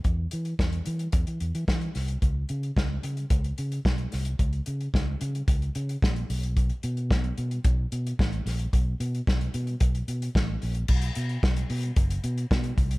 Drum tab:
CC |----------------|----------------|----------------|----------------|
HH |x-xx-xxxxxxx-xox|x-xx--xxxxxx-xox|xxxx--xxxxxx-xox|xxxx-xxxx-xx-xox|
SD |----o-------o-o-|----o-------o-o-|----o-------o---|----o-------o-o-|
BD |o---o---o---o---|o---o---o---o---|o---o---o---o---|o---o---o---o---|

CC |----------------|x---------------|
HH |x-xx-xxxxxxx--ox|-xxx-xoxxxxx-xxx|
SD |----o-------o---|----o-------o---|
BD |o---o---o---o---|o---o---o---o-o-|